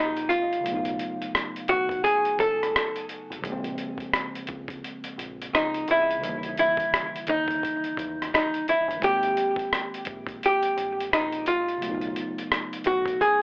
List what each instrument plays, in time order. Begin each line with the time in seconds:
Already playing: fingered electric bass A#1, tine electric piano D#3 G#3 A#3 C4 G4, hollow-body jazz guitar D#4
0.17 closed hi-hat
0.29 fingered electric bass G#1, hollow-body jazz guitar F4, closed hi-hat
0.53 closed hi-hat
0.61 fingered electric bass B1, tine electric piano C#3 F#3
0.66 tine electric piano A3, closed hi-hat
0.71 tine electric piano B3 D#4
0.85 closed hi-hat
0.99 closed hi-hat
1.22 closed hi-hat
1.35 cross-stick, closed hi-hat
1.56 closed hi-hat
1.68 fingered electric bass B1, hollow-body jazz guitar F#4, kick, closed hi-hat
1.89 kick, closed hi-hat
2.04 hollow-body jazz guitar G#4, kick, closed hi-hat
2.25 muted fingered electric bass stroke, closed hi-hat
2.39 fingered electric bass C#2, hollow-body jazz guitar A4, kick, closed hi-hat
2.63 cross-stick, closed hi-hat
2.76 cross-stick, closed hi-hat
2.96 closed hi-hat
3.09 closed hi-hat
3.30 fingered electric bass G#1, closed hi-hat
3.39 tine electric piano C3 F3
3.44 fingered electric bass A#1, tine electric piano C#3 G#3, kick, closed hi-hat
3.48 tine electric piano A#3 C4
3.64 closed hi-hat
3.78 closed hi-hat
3.98 kick, closed hi-hat
4.14 cross-stick, closed hi-hat
4.35 closed hi-hat
4.47 fingered electric bass C#2, kick, closed hi-hat
4.68 kick, closed hi-hat
4.84 closed hi-hat
5.04 muted fingered electric bass stroke, closed hi-hat
5.18 fingered electric bass A#1, closed hi-hat
5.42 closed hi-hat
5.53 fingered electric bass C#2, hollow-body jazz guitar D#4, cross-stick, closed hi-hat
5.74 closed hi-hat
5.88 fingered electric bass C#2, hollow-body jazz guitar E4, closed hi-hat
6.11 closed hi-hat
6.18 tine electric piano C#3 E3
6.23 fingered electric bass D#2, tine electric piano G3, closed hi-hat
6.28 tine electric piano D#3 A#3
6.43 closed hi-hat
6.57 hollow-body jazz guitar E4, closed hi-hat
6.77 kick, closed hi-hat
6.94 cross-stick, closed hi-hat
7.16 closed hi-hat
7.27 fingered electric bass D#2, hollow-body jazz guitar D#4, kick, closed hi-hat
7.48 kick, closed hi-hat
7.63 kick, closed hi-hat
7.84 muted fingered electric bass stroke, closed hi-hat
7.97 fingered electric bass E2, kick, closed hi-hat
8.22 cross-stick, closed hi-hat
8.34 hollow-body jazz guitar D#4, cross-stick, closed hi-hat
8.54 closed hi-hat
8.68 hollow-body jazz guitar E4, closed hi-hat
8.88 fingered electric bass G1, closed hi-hat
8.96 tine electric piano D#3 G#3
9.02 fingered electric bass G#1, tine electric piano A#3 C4, hollow-body jazz guitar G4, kick, closed hi-hat
9.09 tine electric piano G4
9.23 closed hi-hat
9.37 closed hi-hat
9.56 kick, closed hi-hat
9.73 cross-stick, closed hi-hat
9.94 closed hi-hat
10.05 fingered electric bass A#1, kick, closed hi-hat
10.27 kick, closed hi-hat
10.43 hollow-body jazz guitar G4, closed hi-hat
10.63 muted fingered electric bass stroke, closed hi-hat
10.77 fingered electric bass G1, closed hi-hat
11.00 closed hi-hat
11.11 fingered electric bass A#1, hollow-body jazz guitar D#4, cross-stick, closed hi-hat
11.32 closed hi-hat
11.46 fingered electric bass G#1, hollow-body jazz guitar F4, closed hi-hat
11.68 closed hi-hat
11.78 tine electric piano C#3 F#3
11.82 fingered electric bass B1, tine electric piano A3, closed hi-hat
11.87 tine electric piano B3 D#4
12.01 closed hi-hat
12.16 closed hi-hat
12.38 closed hi-hat
12.52 cross-stick, closed hi-hat
12.73 closed hi-hat
12.84 fingered electric bass B1, hollow-body jazz guitar F#4, kick, closed hi-hat
13.06 kick, closed hi-hat
13.21 hollow-body jazz guitar G#4, kick, closed hi-hat